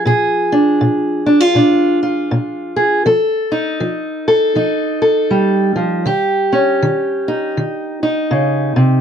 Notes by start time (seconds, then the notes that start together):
Already playing: F3 F4
0.06 A#2 G#4
0.52 D4
0.81 A#2
1.26 D4
1.40 F4
1.55 A#2 D4
2.03 F4
2.31 A#2
2.76 G#4
3.06 F3 A4
3.52 D#4
3.80 F3
4.28 A4
4.55 F3 D#4
5.02 A4
5.31 G3
5.76 F3
6.06 D#3 G4
6.53 C#4
6.82 D#3
7.28 D#4
7.57 D#3
8.03 D#4
8.31 C#3
8.76 C3